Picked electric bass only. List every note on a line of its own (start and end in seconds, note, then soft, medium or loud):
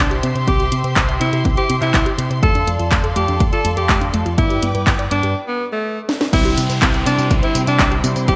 0.00 0.19 C2 medium
0.23 0.33 C3 medium
0.35 0.45 C3 medium
0.48 0.67 C2 medium
0.72 0.82 C3 loud
0.84 0.94 C3 loud
0.96 1.16 C2 medium
1.20 1.30 C3 medium
1.33 1.43 C3 medium
1.45 1.55 C2 loud
1.70 1.79 C3 medium
1.82 1.92 C3 medium
1.94 2.04 C2 medium
2.18 2.28 C3 medium
2.30 2.40 C3 medium
2.43 2.62 F1 medium
2.67 2.77 F2 loud
2.79 2.89 F2 loud
2.92 3.11 F1 medium
3.16 3.26 F2 medium
3.28 3.38 F2 medium
3.40 3.50 F1 medium
3.65 3.75 F2 medium
3.77 3.87 F2 medium
3.89 4.09 F1 medium
4.13 4.23 F2 medium
4.26 4.36 F2 medium
4.38 4.58 G1 medium
4.62 4.72 G2 loud
4.74 4.84 G2 loud
4.87 5.06 G1 medium
5.11 5.21 G2 medium
5.23 5.33 G2 medium
6.33 6.53 C2 loud
6.57 6.67 C3 loud
6.69 6.79 C3 loud
6.82 7.02 C2 medium
7.06 7.16 C3 medium
7.18 7.28 C3 medium
7.30 7.40 C2 medium
7.55 7.65 C3 medium
7.67 7.77 C3 medium
7.79 7.99 C2 medium
8.04 8.14 C3 medium
8.16 8.26 C3 medium
8.28 8.36 C2 loud